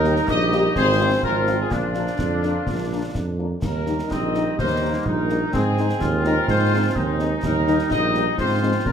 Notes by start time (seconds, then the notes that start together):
Already playing: D#2 G3 D#4 A#4
0.04 A#3 D#4 G4, snare
0.16 snare
0.28 A#1 G4 D#5, concert bass drum, snare
0.52 A#3 D#4 G4, snare
0.75 G#1 F3 C4 G#4 C5, concert bass drum, snare
1.00 F3 C4 F4
1.23 G#1 F4 A#4, concert bass drum
1.47 F3 C4 F4, snare
1.60 G#4
1.70 A#1 F3 D4 F4, concert bass drum, snare
1.94 F3 A#3 D4, snare
2.07 snare
2.19 F2, concert bass drum, snare
2.43 F3 A#3 D4, snare
2.67 A#1, concert bass drum, snare
2.91 F3 A#3 D4
3.14 F2, concert bass drum, snare
3.38 F3 A#3 D4
3.61 D#2 G3 D#4 A#4, concert bass drum, snare, crash
3.86 G3 A#3 D#4, snare
3.99 snare
4.09 A#1 C4 D#5, concert bass drum, snare
4.34 G3 A#3 D#4, snare
4.58 D#2 A#3 C5, concert bass drum, snare
4.81 G3 A#3 D#4
5.05 A#1 D#4 A#4, concert bass drum
5.30 G3 A#3 D#4, snare
5.52 G#2 G#3 C4 G#4, concert bass drum, snare
5.78 G#3 C4 D#4, snare
5.89 snare
6.01 D#2 F4, concert bass drum, snare
6.24 G#3 C4 D#4 A#4, snare
6.48 G#2 C5, concert bass drum, snare
6.72 G#3 C4 D#4
6.95 D#2 D#4, concert bass drum
7.20 G#3 C4 D#4, snare
7.43 D#2 G3 D#4 A#4, concert bass drum, snare, crash
7.68 G3 A#3 D#4, snare
7.79 snare
7.90 A#1 D#5, concert bass drum, snare
8.15 G3 A#3 D#4, snare
8.38 G#2 F3 C4 F4 C5, concert bass drum, snare
8.63 F3 G#3 C4
8.86 A#2 G#3 D4 A#4, concert bass drum